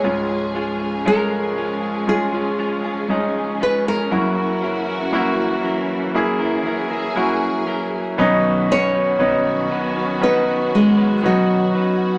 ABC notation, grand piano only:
X:1
M:4/4
L:1/8
Q:1/4=59
K:B
V:1 name="Grand piano"
[G,C^E]2 [G,CG]2 [G,CE]2 [G,CD]2 | [A,EF]2 [A,EF]2 [A,EG]2 [A,EF]2 | [B,CD]2 [B,CD]2 [B,CD]2 [B,CD]2 |]
V:2 name="Grand piano" clef=bass
[C,,G,,]8 | [F,,C,]8 | [B,,,F,,]8 |]